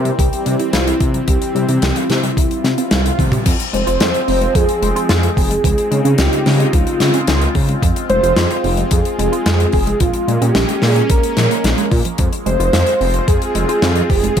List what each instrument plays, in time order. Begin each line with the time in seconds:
Already playing: detuned saw bass C3, analog synth pad E3 G3 C4, analog synth lead A#4
0.05 synth arpeggio sound G3, closed hi-hat
0.19 detuned saw bass C2, synth arpeggio sound E3, analog synth lead G4, kick, closed hi-hat
0.33 closed hi-hat
0.46 detuned saw bass C3, synth arpeggio sound G3, closed hi-hat
0.60 synth arpeggio sound E4, closed hi-hat
0.73 detuned saw bass C2, synth arpeggio sound E4, analog synth lead F4, snare, closed hi-hat
0.87 analog synth lead E4, closed hi-hat
1.00 detuned saw bass C3, synth arpeggio sound C4, kick, closed hi-hat
1.14 synth arpeggio sound G3, closed hi-hat
1.28 detuned saw bass C2, synth arpeggio sound E3, analog synth lead G4, kick, closed hi-hat
1.42 closed hi-hat
1.55 detuned saw bass C3, synth arpeggio sound G3, closed hi-hat
1.69 detuned saw bass C3, synth arpeggio sound E4, closed hi-hat
1.82 detuned saw bass C2, synth arpeggio sound E4, analog synth lead G4, snare, closed hi-hat
1.96 analog synth lead F4, closed hi-hat
2.10 detuned saw bass C3, synth arpeggio sound C4, analog synth lead E4, snare, closed hi-hat
2.23 synth arpeggio sound G3, closed hi-hat
2.37 detuned saw bass C2, synth arpeggio sound E3, kick, closed hi-hat, swell
2.51 closed hi-hat
2.64 detuned saw bass C3, synth arpeggio sound C4, snare, closed hi-hat
2.78 synth arpeggio sound C4, closed hi-hat
2.91 detuned saw bass C2, synth arpeggio sound G3, snare, closed hi-hat
3.06 closed hi-hat
3.19 detuned saw bass C3, synth arpeggio sound G3, kick, closed hi-hat, high tom
3.32 synth arpeggio sound G4, closed hi-hat, mid tom
3.46 detuned saw bass F2, synth arpeggio sound F3, analog synth pad F3 G#3 C4, kick, closed hi-hat, crash
3.60 closed hi-hat
3.73 detuned saw bass F1, synth arpeggio sound G#3, analog synth lead C5, digital synth lead C5, closed hi-hat
3.87 detuned saw bass F1, synth arpeggio sound F4, closed hi-hat
4.00 detuned saw bass F2, synth arpeggio sound F4, snare, closed hi-hat
4.14 closed hi-hat
4.28 detuned saw bass F1, synth arpeggio sound C4, open hi-hat
4.41 synth arpeggio sound G#3, closed hi-hat
4.55 detuned saw bass F2, synth arpeggio sound F3, digital synth lead G#4, analog synth lead G#4, kick, closed hi-hat
4.69 closed hi-hat
4.82 detuned saw bass F1, synth arpeggio sound G#3, closed hi-hat
4.96 synth arpeggio sound F4, closed hi-hat
5.09 detuned saw bass F2, synth arpeggio sound F4, snare, closed hi-hat
5.23 closed hi-hat
5.37 detuned saw bass F1, synth arpeggio sound C4, digital synth lead G#4, analog synth lead G#4, kick, open hi-hat
5.50 synth arpeggio sound G#3, closed hi-hat
5.64 detuned saw bass C#2, analog synth pad C#3 C4 D#4 F4, synth arpeggio sound F3, kick, closed hi-hat
5.78 closed hi-hat
5.91 detuned saw bass C#3, synth arpeggio sound G#3, closed hi-hat
6.05 detuned saw bass C#3, synth arpeggio sound C#4, closed hi-hat
6.18 detuned saw bass C#2, synth arpeggio sound C#4, digital synth lead G4, analog synth lead G4, snare, closed hi-hat
6.33 closed hi-hat
6.46 detuned saw bass C#3, synth arpeggio sound C4, snare, open hi-hat
6.59 synth arpeggio sound G#3, closed hi-hat
6.73 detuned saw bass C#2, synth arpeggio sound F3, digital synth lead F4, analog synth lead F4, kick, closed hi-hat
6.87 closed hi-hat
7.00 detuned saw bass C#3, synth arpeggio sound G#3, snare, closed hi-hat
7.14 synth arpeggio sound C#4, closed hi-hat
7.27 detuned saw bass C#2, synth arpeggio sound C#4, snare, closed hi-hat
7.42 closed hi-hat
7.55 detuned saw bass C#3, synth arpeggio sound C4, kick, open hi-hat
7.69 synth arpeggio sound G#3, closed hi-hat
7.82 detuned saw bass F2, synth arpeggio sound F3, kick, closed hi-hat
7.96 closed hi-hat
8.10 detuned saw bass F1, synth arpeggio sound G#3, digital synth lead C5, analog synth lead C5, closed hi-hat
8.23 detuned saw bass F1, synth arpeggio sound F4, closed hi-hat
8.37 detuned saw bass F2, synth arpeggio sound F4, snare, closed hi-hat
8.51 closed hi-hat
8.64 detuned saw bass F1, synth arpeggio sound C4, open hi-hat
8.77 synth arpeggio sound G#3, closed hi-hat
8.91 detuned saw bass F2, synth arpeggio sound F3, digital synth lead G#4, analog synth lead G#4, kick, closed hi-hat
9.05 closed hi-hat
9.19 detuned saw bass F1, synth arpeggio sound G#3, closed hi-hat
9.32 synth arpeggio sound F4, closed hi-hat
9.46 detuned saw bass F2, synth arpeggio sound F4, snare, closed hi-hat
9.60 closed hi-hat
9.72 detuned saw bass F1, synth arpeggio sound C4, digital synth lead G#4, analog synth lead G#4, kick, open hi-hat
9.87 synth arpeggio sound G#3, closed hi-hat
10.00 detuned saw bass A#1, synth arpeggio sound F3, analog synth pad A#3 C#4, analog synth lead F4, digital synth lead F4, kick, closed hi-hat
10.14 closed hi-hat
10.28 detuned saw bass A#2, synth arpeggio sound G#3, closed hi-hat
10.41 detuned saw bass A#2, synth arpeggio sound C#4, digital synth lead G4, analog synth lead G4, closed hi-hat
10.55 detuned saw bass A#1, synth arpeggio sound C#4, snare, closed hi-hat
10.69 closed hi-hat
10.82 detuned saw bass A#2, synth arpeggio sound A#3, analog synth lead G#4, digital synth lead G#4, snare, open hi-hat
10.96 synth arpeggio sound G#3, closed hi-hat
11.10 detuned saw bass A#1, synth arpeggio sound F3, analog synth lead A#4, digital synth lead A#4, kick, closed hi-hat
11.23 closed hi-hat
11.37 detuned saw bass A#2, synth arpeggio sound F3, snare, closed hi-hat
11.51 synth arpeggio sound A#3, closed hi-hat
11.64 detuned saw bass A#1, synth arpeggio sound C#4, snare, closed hi-hat
11.78 synth arpeggio sound G#3, closed hi-hat
11.91 detuned saw bass A#2, synth arpeggio sound F4, kick, open hi-hat
12.05 synth arpeggio sound F3, closed hi-hat
12.18 detuned saw bass F2, synth arpeggio sound F3, analog synth pad G#3 C4 F4, kick, closed hi-hat
12.33 closed hi-hat
12.46 detuned saw bass F1, synth arpeggio sound G#3, analog synth lead C5, digital synth lead C5, closed hi-hat
12.60 detuned saw bass F1, synth arpeggio sound F4, closed hi-hat
12.73 detuned saw bass F2, synth arpeggio sound F4, snare, closed hi-hat
12.86 closed hi-hat
13.01 detuned saw bass F1, synth arpeggio sound C4, open hi-hat
13.14 synth arpeggio sound G#3, closed hi-hat
13.28 detuned saw bass F2, synth arpeggio sound F3, analog synth lead G#4, digital synth lead G#4, kick, closed hi-hat
13.42 closed hi-hat
13.55 detuned saw bass F1, synth arpeggio sound G#3, closed hi-hat
13.69 synth arpeggio sound F4, closed hi-hat
13.82 detuned saw bass F2, synth arpeggio sound F4, snare, closed hi-hat
13.96 closed hi-hat
14.10 detuned saw bass F1, synth arpeggio sound C4, analog synth lead G#4, digital synth lead G#4, kick, open hi-hat
14.23 synth arpeggio sound G#3, closed hi-hat
14.37 analog synth pad C#3 D#4, kick, closed hi-hat